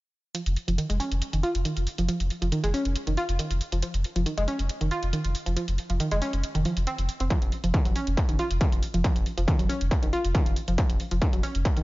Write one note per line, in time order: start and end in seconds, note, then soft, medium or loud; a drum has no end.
0.35 0.41 F3 medium
0.35 closed hi-hat medium
0.46 0.56 F1 medium
0.46 closed hi-hat medium
0.56 open hi-hat loud
0.68 0.78 F1 medium
0.68 0.72 F3 medium
0.68 closed hi-hat medium
0.78 0.85 D#3 medium
0.78 closed hi-hat medium
0.90 1.00 F1 medium
0.90 0.96 G#3 loud
0.90 closed hi-hat medium
1.00 1.10 C#4 loud
1.00 open hi-hat loud
1.11 1.22 F1 medium
1.11 closed hi-hat medium
1.22 closed hi-hat medium
1.33 1.43 F1 medium
1.33 1.39 D#3 medium
1.33 closed hi-hat medium
1.43 1.50 F4 loud
1.43 open hi-hat loud
1.55 1.65 F1 medium
1.55 closed hi-hat medium
1.65 1.72 D#3 medium
1.65 closed hi-hat medium
1.77 1.87 F1 medium
1.77 closed hi-hat medium
1.87 open hi-hat loud
1.98 2.08 F1 medium
1.98 2.04 F3 medium
1.98 closed hi-hat medium
2.09 2.15 F3 medium
2.09 closed hi-hat medium
2.20 2.30 F1 medium
2.20 closed hi-hat medium
2.30 open hi-hat loud
2.42 2.52 F1 medium
2.42 2.45 F3 medium
2.42 closed hi-hat medium
2.52 2.59 D#3 medium
2.52 closed hi-hat medium
2.64 2.74 F1 medium
2.64 2.70 G#3 loud
2.64 closed hi-hat medium
2.74 2.84 C#4 loud
2.74 open hi-hat loud
2.85 2.95 F1 medium
2.85 closed hi-hat medium
2.96 closed hi-hat medium
3.07 3.17 F1 medium
3.07 3.13 D#3 medium
3.07 closed hi-hat soft
3.17 3.24 F4 loud
3.17 open hi-hat loud
3.29 3.39 F1 medium
3.29 closed hi-hat medium
3.39 3.46 D#3 medium
3.39 closed hi-hat medium
3.50 3.61 F1 medium
3.50 closed hi-hat medium
3.61 open hi-hat loud
3.72 3.82 F1 medium
3.72 3.78 F3 medium
3.72 closed hi-hat medium
3.83 3.89 F3 medium
3.83 closed hi-hat medium
3.94 4.04 F1 medium
3.94 closed hi-hat medium
4.04 open hi-hat loud
4.16 4.26 F1 medium
4.16 4.19 F3 medium
4.16 closed hi-hat soft
4.26 4.33 D#3 medium
4.26 closed hi-hat medium
4.38 4.48 F1 medium
4.38 4.43 G#3 loud
4.38 closed hi-hat medium
4.48 4.58 C#4 loud
4.48 open hi-hat loud
4.59 4.69 F1 medium
4.59 closed hi-hat medium
4.69 closed hi-hat medium
4.81 4.91 F1 medium
4.81 4.87 D#3 medium
4.81 closed hi-hat medium
4.91 4.98 F4 loud
4.91 open hi-hat loud
5.03 5.13 F1 medium
5.03 closed hi-hat soft
5.13 5.20 D#3 medium
5.13 closed hi-hat medium
5.25 5.35 F1 medium
5.25 closed hi-hat medium
5.35 open hi-hat loud
5.46 5.56 F1 medium
5.46 5.52 F3 medium
5.46 closed hi-hat medium
5.57 5.63 F3 medium
5.57 closed hi-hat medium
5.68 5.78 F1 medium
5.68 closed hi-hat medium
5.78 open hi-hat loud
5.90 6.00 F1 medium
5.90 5.93 F3 medium
5.90 closed hi-hat soft
6.00 6.07 D#3 medium
6.00 closed hi-hat medium
6.11 6.22 F1 medium
6.11 6.17 G#3 loud
6.11 closed hi-hat soft
6.22 6.32 C#4 loud
6.22 open hi-hat loud
6.33 6.43 F1 medium
6.33 closed hi-hat soft
6.44 closed hi-hat medium
6.55 6.65 F1 medium
6.55 6.61 D#3 medium
6.55 closed hi-hat soft
6.65 6.75 F3 medium
6.65 open hi-hat loud
6.77 6.87 F1 medium
6.77 closed hi-hat soft
6.87 6.94 C4 loud
6.87 closed hi-hat medium
6.98 7.08 F1 medium
6.98 closed hi-hat medium
7.09 open hi-hat loud
7.20 7.30 F1 medium
7.20 7.24 C4 medium
7.20 closed hi-hat soft
7.30 7.37 F3 medium
7.30 kick loud
7.30 closed hi-hat medium
7.42 7.52 F1 medium
7.42 closed hi-hat soft
7.52 open hi-hat loud
7.64 7.74 F1 medium
7.64 7.67 F3 medium
7.64 closed hi-hat soft
7.74 7.81 D#3 medium
7.74 kick loud
7.74 closed hi-hat medium
7.85 7.95 F1 medium
7.85 7.94 F#3 medium
7.85 closed hi-hat soft
7.96 8.06 C#4 loud
7.96 open hi-hat loud
8.07 8.17 F1 medium
8.07 closed hi-hat soft
8.17 kick loud
8.17 closed hi-hat medium
8.29 8.39 F1 medium
8.29 8.35 D#3 medium
8.29 closed hi-hat soft
8.39 8.46 F4 loud
8.39 open hi-hat loud
8.51 8.61 F1 medium
8.51 closed hi-hat soft
8.61 8.68 D#3 medium
8.61 kick loud
8.61 closed hi-hat medium
8.72 8.82 F1 medium
8.72 closed hi-hat soft
8.83 open hi-hat loud
8.94 9.04 F1 medium
8.94 9.00 F3 medium
8.94 closed hi-hat soft
9.04 9.11 F3 medium
9.04 kick loud
9.04 closed hi-hat medium
9.16 9.26 F1 medium
9.16 closed hi-hat soft
9.26 open hi-hat loud
9.38 9.48 F1 medium
9.38 9.41 F3 medium
9.38 closed hi-hat soft
9.48 9.54 D#3 medium
9.48 kick loud
9.48 closed hi-hat medium
9.59 9.69 F1 medium
9.59 9.68 F#3 medium
9.59 closed hi-hat soft
9.69 9.79 C#4 loud
9.69 open hi-hat loud
9.81 9.91 F1 medium
9.81 closed hi-hat soft
9.91 kick loud
9.91 closed hi-hat medium
10.03 10.13 F1 medium
10.03 10.09 D#3 medium
10.03 closed hi-hat soft
10.13 10.20 F4 loud
10.13 open hi-hat loud
10.25 10.35 F1 medium
10.25 closed hi-hat soft
10.35 10.41 D#3 medium
10.35 kick loud
10.35 closed hi-hat medium
10.46 10.56 F1 medium
10.46 closed hi-hat soft
10.56 open hi-hat loud
10.68 10.78 F1 medium
10.68 10.74 F3 medium
10.68 closed hi-hat soft
10.78 10.85 F3 medium
10.78 kick loud
10.78 closed hi-hat medium
10.90 11.00 F1 medium
10.90 closed hi-hat medium
11.00 open hi-hat loud
11.11 11.22 F1 medium
11.11 11.15 F3 medium
11.11 closed hi-hat soft
11.22 11.28 D#3 medium
11.22 kick loud
11.22 closed hi-hat medium
11.33 11.43 F1 medium
11.33 11.42 F#3 medium
11.33 closed hi-hat soft
11.43 11.53 C#4 loud
11.43 open hi-hat medium
11.55 11.65 F1 medium
11.55 closed hi-hat medium
11.65 kick loud
11.65 closed hi-hat medium
11.77 11.83 F1 medium
11.77 11.83 D#3 medium
11.77 closed hi-hat soft